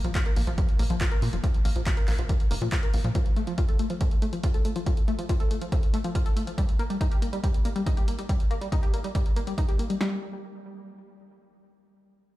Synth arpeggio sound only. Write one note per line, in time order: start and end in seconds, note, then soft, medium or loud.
0.04 0.10 F3 medium
0.15 0.19 F4 loud
0.26 0.35 A#4 medium
0.36 0.42 A#3 medium
0.47 0.51 F3 medium
0.58 0.61 F3 loud
0.79 0.83 A#3 loud
0.90 0.96 F3 medium
1.01 1.04 F4 loud
1.11 1.20 A#4 medium
1.22 1.28 A#3 medium
1.33 1.36 F3 medium
1.44 1.47 F3 loud
1.65 1.69 A#3 loud
1.76 1.82 F3 medium
1.86 1.90 F4 loud
1.97 2.06 A#4 medium
2.08 2.14 A#3 medium
2.19 2.22 F3 medium
2.29 2.33 F3 loud
2.51 2.54 A#3 loud
2.62 2.67 F3 medium
2.72 2.76 F4 loud
2.83 2.92 A#4 medium
2.94 3.00 A#3 medium
3.04 3.08 F3 medium
3.15 3.19 F3 loud
3.37 3.40 A3 loud
3.47 3.53 F3 medium
3.58 3.61 F4 loud
3.69 3.77 A4 medium
3.79 3.85 A3 medium
3.90 3.94 F3 medium
4.01 4.04 F3 loud
4.22 4.26 A3 loud
4.33 4.39 F3 medium
4.44 4.47 F4 loud
4.54 4.63 A4 medium
4.65 4.71 A3 medium
4.76 4.79 F3 medium
4.86 4.90 F3 loud
5.08 5.11 A3 loud
5.19 5.24 F3 medium
5.29 5.33 F4 loud
5.40 5.49 A4 medium
5.51 5.57 A3 medium
5.61 5.65 F3 medium
5.72 5.76 F3 loud
5.94 5.97 A3 loud
6.04 6.10 F3 medium
6.15 6.19 F4 loud
6.26 6.35 A4 medium
6.37 6.42 A3 medium
6.47 6.51 F3 medium
6.58 6.61 G3 loud
6.79 6.83 A#3 loud
6.90 6.96 G3 medium
7.01 7.04 D#4 loud
7.11 7.20 G4 medium
7.22 7.28 A#3 medium
7.33 7.36 G3 medium
7.43 7.47 G3 loud
7.65 7.69 A#3 loud
7.76 7.82 G3 medium
7.86 7.90 D#4 loud
7.97 8.06 G4 medium
8.08 8.14 A#3 medium
8.19 8.22 G3 medium
8.29 8.33 G3 loud
8.51 8.54 A#3 loud
8.61 8.67 G3 medium
8.72 8.76 D#4 medium
8.83 8.92 G4 medium
8.94 8.99 A#3 medium
9.04 9.08 G3 medium
9.15 9.18 G3 loud
9.36 9.40 A#3 loud
9.47 9.53 G3 medium
9.58 9.61 D#4 loud
9.68 9.77 G4 medium
9.79 9.85 A#3 medium
9.90 9.93 G3 medium
10.01 10.21 G3 medium